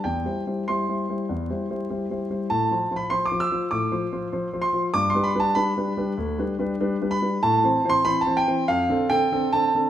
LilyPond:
\new Staff \with { instrumentName = "Grand piano" } { \time 4/4 \key c \major \tempo 4 = 97 << { g''4 c'''2 r4 | a''8. b''16 c'''16 d'''16 e'''8 d'''4. c'''8 | d'''16 c'''16 b''16 a''16 b''2~ b''8 b''8 | a''8. c'''16 b''16 a''16 g''8 \tuplet 3/2 { f''4 g''8~ g''8 a''4 } | } \\ { \tuplet 3/2 { e,8 <g e' c''>8 <g e' c''>8 <g e' c''>8 <g e' c''>8 <g e' c''>8 e,8 <g e' c''>8 <g e' c''>8 <g e' c''>8 <g e' c''>8 <g e' c''>8 } | \tuplet 3/2 { a,8 <f f' c''>8 <f f' c''>8 <f f' c''>8 <f f' c''>8 <f f' c''>8 a,8 <f f' c''>8 <f f' c''>8 <f f' c''>8 <f f' c''>8 <f f' c''>8 } | \tuplet 3/2 { g,8 <g d' b'>8 <g d' b'>8 <g d' b'>8 <g d' b'>8 <g d' b'>8 d,8 <g d' b'>8 <g d' b'>8 <g d' b'>8 <g d' b'>8 <g d' b'>8 } | \tuplet 3/2 { a,8 <e c' c''>8 <e c' c''>8 <e c' c''>8 <e c' c''>8 <e c' c''>8 f,8 <d c' a'>8 <d c' a'>8 <d c' a'>8 <d c' a'>8 <d c' a'>8 } | } >> }